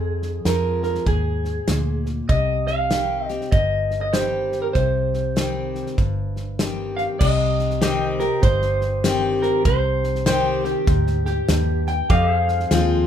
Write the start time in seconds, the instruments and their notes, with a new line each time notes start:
Already playing: fingered electric bass F2, steel-string acoustic guitar F2, clean electric guitar G#4
0.22 snare
0.45 fingered electric bass F2, steel-string acoustic guitar F3 G#3 C4 F4, clean electric guitar A#4, snare, hi-hat pedal
0.83 clean electric guitar A#4, snare
0.95 snare
1.06 fingered electric bass D#2, steel-string acoustic guitar G#2, clean electric guitar G#4, kick, snare
1.45 snare
1.68 fingered electric bass D2, steel-string acoustic guitar A#2, snare, hi-hat pedal
2.06 snare
2.29 fingered electric bass C2, steel-string acoustic guitar C3, clean electric guitar D#5, kick, snare
2.67 clean electric guitar F5, snare
2.90 steel-string acoustic guitar D#3 G3 C4 G4, snare, hi-hat pedal
3.25 steel-string acoustic guitar G4, clean electric guitar D#5, snare
3.31 steel-string acoustic guitar C4
3.41 snare
3.52 fingered electric bass G1, steel-string acoustic guitar G2, clean electric guitar D#5, kick, snare
3.91 snare
4.01 clean electric guitar D#5
4.13 steel-string acoustic guitar D#3 G3 C4 G4, clean electric guitar C5, snare, hi-hat pedal
4.52 snare
4.62 clean electric guitar A#4
4.73 fingered electric bass C2, steel-string acoustic guitar C3, clean electric guitar C5, kick, snare
5.14 snare
5.36 steel-string acoustic guitar D#3 G3 C4 G4, snare, hi-hat pedal
5.75 snare
5.87 snare
5.98 fingered electric bass G1, steel-string acoustic guitar G2, kick, snare
6.36 snare
6.59 steel-string acoustic guitar D#3 G3 C4 G4, snare, hi-hat pedal
6.97 clean electric guitar F5, snare
7.19 fingered electric bass C2, steel-string acoustic guitar C3, clean electric guitar D#5, kick, snare, crash
7.59 snare
7.70 snare
7.82 steel-string acoustic guitar D#3 G3 C4 G4, pedal steel guitar G4 C5 D#5, snare, hi-hat pedal
8.20 steel-string acoustic guitar C4 G4, clean electric guitar A#4, snare
8.43 fingered electric bass G1, steel-string acoustic guitar G2, clean electric guitar C5, kick, snare
8.62 snare
8.81 snare
9.04 steel-string acoustic guitar D#3 G3 C4 G4, snare, hi-hat pedal
9.42 clean electric guitar A#4, snare
9.65 fingered electric bass C2, steel-string acoustic guitar C3, clean electric guitar C5, kick, snare
10.04 snare
10.15 snare
10.26 steel-string acoustic guitar D#3 G3 C4 G4, clean electric guitar C5, snare, hi-hat pedal
10.65 clean electric guitar G4, snare
10.87 fingered electric bass D2, steel-string acoustic guitar G#2, kick, snare
11.07 snare
11.26 clean electric guitar G4, snare
11.48 fingered electric bass D#2, steel-string acoustic guitar G2, snare, hi-hat pedal
11.87 clean electric guitar G5, snare
12.10 steel-string acoustic guitar F2, fingered electric bass F2, pedal steel guitar G4 C5 D#5, clean electric guitar F5, kick, snare
12.30 pedal steel guitar G#4
12.37 pedal steel guitar F5
12.48 snare
12.60 snare
12.71 fingered electric bass D#2, steel-string acoustic guitar F3 G#3 C4 F4, snare, hi-hat pedal